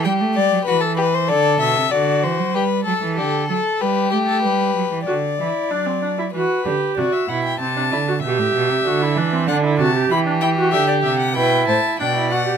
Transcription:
<<
  \new Staff \with { instrumentName = "Violin" } { \time 4/4 \key d \dorian \tempo 4 = 95 g''8 d''8 b'16 a'16 b'16 c''16 d''8 e''8 d''8 c''8 | b'8 a'8 g'8 a'8 b'8 g'16 a'16 b'4 | d''2 b'4 d''16 e''16 fis''16 g''16 | a''4 e''2 fis''8 a''8 |
\key e \minor b''8 g''8 e''16 d''16 e''16 fis''16 g''8 a''8 g''8 fis''8 | }
  \new Staff \with { instrumentName = "Violin" } { \time 4/4 \key d \dorian g'4 fis'8 g'8 a'4 fis'4 | g'8 a'4. g'2 | r1 | r1 |
\key e \minor g'2 b'8 c''8 d''4 | }
  \new Staff \with { instrumentName = "Viola" } { \time 4/4 \key d \dorian r1 | r1 | fis'8 e'8 d'16 c'16 d'16 e'16 fis'8 g'8 fis'8 e'8 | c'16 d'16 e'16 fis'16 g'4 fis'16 e'16 d'16 c'16 d'16 e'16 fis'16 g'16 |
\key e \minor e'16 d'16 e'16 fis'16 g'4 e'4 d'16 e'16 fis'16 g'16 | }
  \new Staff \with { instrumentName = "Cello" } { \clef bass \time 4/4 \key d \dorian g16 a16 g16 fis16 e4 d8 b,16 c16 d8 e16 fis16 | g8 fis16 e16 d8 fis8 g8 a8 g8 fis16 e16 | d8 e8 fis4 e8 d8 c8 b,8 | c8 d8 b,16 a,16 b,16 c16 d8 e8 d8 c8 |
\key e \minor e4 d8 c8 b,8 a,8 b,4 | }
>>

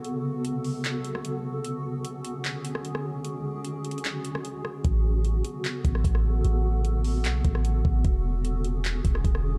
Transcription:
<<
  \new Staff \with { instrumentName = "Ambient pad" } { \time 4/4 \key a \major \tempo 4 = 150 << { <cis b a'>1 | <d cis' gis'>1~ | <d cis' gis'>1 | <cis b a'>1~ |
<cis b a'>1 | <d cis' gis'>1 | } \\ { fis'1 | fis'1~ | fis'1~ | fis'1~ |
fis'1~ | fis'1 | } >> }
  \new Staff \with { instrumentName = "808-style bass" } { \clef bass \time 4/4 \key a \major r1 | r1 | r1 | a,,4. r4 a,,8 a,,4 |
a,,2 b,,8 a,,4 a,,8 | e,,2~ e,,8 e,,8 e,,4 | }
  \new DrumStaff \with { instrumentName = "Drums" } \drummode { \time 4/4 hh4 hh8 hho8 <hc hh>8 hh16 ss16 hh4 | hh4 hh8 hh8 <hc hh>8 hh16 ss16 hh16 ss8. | hh4 \tuplet 3/2 { hh16 r16 r16 hh16 hh16 hh16 } <hc hh>8 hh16 ss16 hh8 ss8 | <hh bd>4 hh8 hh8 <hc hh>8 <hh bd>16 ss16 <hh bd>16 ss8. |
hh4 hh8 hho8 <hc hh>8 <hh bd>16 ss16 hh8 bd8 | <hh bd>4 hh8 hh8 <hc hh>8 <hh bd>16 ss16 <hh bd>16 ss8. | }
>>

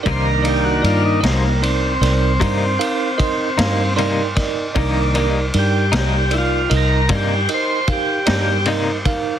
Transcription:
<<
  \new Staff \with { instrumentName = "Tine electric piano" } { \time 12/8 \key c \minor \tempo 4. = 51 <ees' bes' d''>8 <ees' bes' d''>8 <ees' bes' d''>8 <ees' bes' ees''>8 <ees' bes' d''>8 <ees' bes' d''>8 <ees' bes' d''>8 <ees' bes' f''>8 <ees' bes' ees''>8 <ees' bes' f''>8 <ees' bes' d'' c'''>8 <ees' bes' d'' ees''>8 | <ees' bes' d''>8 <ees' bes' d''>8 <ees' bes' d''>8 <ees' bes' d''>8 <ees' bes' d''>8 <ees' bes' ees''>8 <ees' bes' d''>8 <ees' bes' ees''>8 <ees' bes' f''>8 <ees' bes' d''>8 <ees' bes' ees''>8 <ees' bes' f''>8 | }
  \new Staff \with { instrumentName = "Tonewheel organ" } { \time 12/8 \key c \minor <b' c''>16 bes'16 g'16 fis'16 f'16 ees'16 c'16 bes16 c'2. r4 | r4 g'8 g'8 <e' f'>8 bes'8 g'8 c''8 g'4 r4 | }
  \new Staff \with { instrumentName = "Tonewheel organ" } { \time 12/8 \key c \minor <ees bes d'>4. r1 r8 | <ees bes d'>8 r1 r4. | }
  \new Staff \with { instrumentName = "Clean electric guitar" } { \time 12/8 \key c \minor <c g bes ees'>8 <g bes ees'>8 r8 <g bes ees'>8 r4 <c g bes ees'>8 r4 <g bes ees'>8 <c g bes ees'>8 r8 | <c g bes ees'>8 <g bes ees'>8 r8 <g bes ees'>8 r4 <c g bes ees'>8 r4 <g bes ees'>8 <c g bes ees'>8 r8 | }
  \new Staff \with { instrumentName = "Fingered electric bass" } { \clef bass \time 12/8 \key c \minor c,4 g,8 c,4 c,8 g,8 r4 g,4. | c,4 g,8 c,4 c,8 g,8 r4 g,4. | }
  \new DrumStaff \with { instrumentName = "Drums" } \drummode { \time 12/8 <bd cymr>8 cymr8 cymr8 <cymr sn>8 cymr8 <cymr sn>8 <bd cymr>8 cymr8 <bd cymr>8 <cymr sn>8 cymr8 <bd cymr sn>8 | <bd cymr>8 cymr8 cymr8 <cymr sn>8 cymr8 cymr8 <bd cymr>8 cymr8 <bd cymr>8 <cymr sn>8 cymr8 <bd cymr>8 | }
>>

